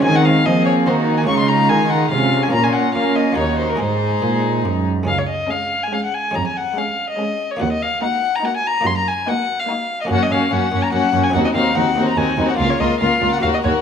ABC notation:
X:1
M:3/4
L:1/16
Q:1/4=144
K:Db
V:1 name="Violin"
a g f2 e2 d2 c3 a | d' c' b2 a2 g2 f3 a | b a g2 f2 e2 d2 c B | c8 z4 |
f d e2 f3 a f g a2 | b a g2 f3 e4 d | g e f2 g3 b g a b2 | c' b a2 g3 f4 e |
[K:Bbm] g e f2 g3 b g3 a | g e f2 g3 b a3 g | f d e2 f3 g f e d2 |]
V:2 name="Violin section"
E4 A4 G4 | F8 F4 | F4 F4 G4 | A8- A2 z2 |
z4 A4 A4 | z4 A4 A4 | z4 G4 G4 | z4 G4 G4 |
[K:Bbm] G2 G2 G2 G2 G2 G2 | G2 G2 G2 G2 G2 G2 | B2 B2 B2 B2 B2 B2 |]
V:3 name="Violin section"
C4 C4 E4 | E8 D4 | D4 D4 E4 | E8- E2 z2 |
z4 D4 D4 | z4 D4 D4 | z4 E4 E4 | z4 E4 E4 |
[K:Bbm] D2 D2 D2 D2 D2 D2 | E2 E2 E2 E2 E2 E2 | F2 F2 F2 F2 G2 G2 |]
V:4 name="Viola section"
A,4 B,8 | A,8 A,4 | B,4 B,4 B,4 | A,8- A,2 z2 |
z4 A,4 A,4 | z4 A,4 A,4 | z4 B,4 B,4 | z4 B,4 B,4 |
[K:Bbm] B,2 B,2 B,2 B,2 B,2 B,2 | C2 C2 C2 C2 C2 C2 | B,2 B,2 B,2 B,2 B,2 B,2 |]
V:5 name="Harpsichord"
[A,CG]12 | [A,DF]12 | [B,DF]8 [B,EG]4 | [A,EA]12 |
[A,DA]12 | [A,DA]12 | [B,EG]12 | [B,EG]12 |
[K:Bbm] [B,DG]12 | [CEG]12 | [B,FB]8 [B,GB]4 |]
V:6 name="Harpsichord" clef=bass
E,4 F,4 E,4 | D,4 E,4 C,4 | B,,4 B,4 E,,4 | A,,4 B,,4 G,,4 |
D,,4 z8 | F,,4 z8 | E,,4 z8 | G,,4 z8 |
[K:Bbm] G,,2 G,,2 G,,2 G,,2 G,,2 G,,2 | E,,2 E,,2 E,,2 E,,2 E,,2 E,,2 | D,,2 D,,2 D,,2 D,,2 E,,2 E,,2 |]
V:7 name="Cello section" clef=bass
E,4 F,4 E,4 | D,4 E,4 C,4 | B,,4 B,4 E,,4 | A,,4 B,,4 G,,4 |
D,,4 z8 | F,,4 z8 | E,,4 z8 | G,,4 z8 |
[K:Bbm] G,,2 G,,2 G,,2 G,,2 G,,2 G,,2 | E,,2 E,,2 E,,2 E,,2 E,,2 E,,2 | D,,2 D,,2 D,,2 D,,2 E,,2 E,,2 |]